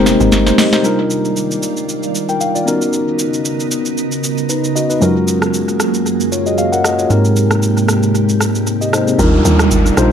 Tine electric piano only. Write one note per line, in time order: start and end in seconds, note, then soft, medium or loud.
0.00 0.86 G#3 medium
0.00 0.86 C4 medium
0.00 0.47 D#4 medium
0.00 0.59 G4 medium
0.00 0.86 A#4 loud
0.00 0.32 C5 loud
0.46 0.58 D#4 medium
0.46 0.58 C5 medium
0.58 0.72 G4 medium
0.58 0.72 D#5 medium
0.73 0.83 D#4 medium
0.73 0.97 C5 medium
0.83 2.63 G3 medium
0.83 2.63 D4 medium
0.83 2.63 D#4 medium
0.83 1.87 F4 medium
0.83 1.87 A#4 medium
2.29 2.40 A#4 medium
2.29 2.40 G5 medium
2.41 2.54 F5 medium
2.55 2.80 F4 medium
2.55 2.80 D5 medium
2.65 4.71 B3 medium
2.65 4.71 C#4 medium
2.65 4.20 D#4 medium
2.65 4.21 F#4 medium
2.65 4.21 A#4 medium
4.49 4.75 D#4 medium
4.49 4.74 B4 medium
4.76 4.90 F#4 medium
4.76 4.89 D#5 medium
4.90 5.15 D#4 medium
4.90 5.15 B4 medium
5.00 7.06 G#3 medium
5.00 7.06 C#4 medium
5.00 6.29 F4 medium
5.00 6.30 F#4 medium
5.00 6.30 A#4 medium
6.32 6.46 F4 medium
6.32 6.46 C#5 medium
6.46 6.58 F#4 medium
6.46 6.58 D#5 medium
6.58 6.72 G#4 medium
6.58 6.72 F5 medium
6.72 6.84 A#4 medium
6.72 6.84 F#5 medium
6.84 6.98 F#4 medium
6.84 6.98 D#5 medium
6.99 7.24 F4 medium
6.99 7.23 C#5 medium
7.09 9.14 G#3 medium
7.09 8.63 C4 medium
7.09 8.64 D#4 medium
7.09 8.64 G4 medium
7.09 8.64 A#4 medium
8.81 8.93 G4 medium
8.81 8.92 D#5 medium
8.93 9.07 D#4 medium
8.93 9.07 C5 medium
9.07 9.32 C4 medium
9.07 9.32 G#4 medium
9.18 9.82 G3 medium
9.18 9.82 D4 medium
9.18 9.83 D#4 medium
9.18 9.83 F4 medium
9.18 9.83 A#4 loud
9.97 10.12 G3 medium
9.97 10.12 D4 medium
9.97 10.12 D#4 medium
9.97 10.12 F4 medium
9.97 10.12 C5 loud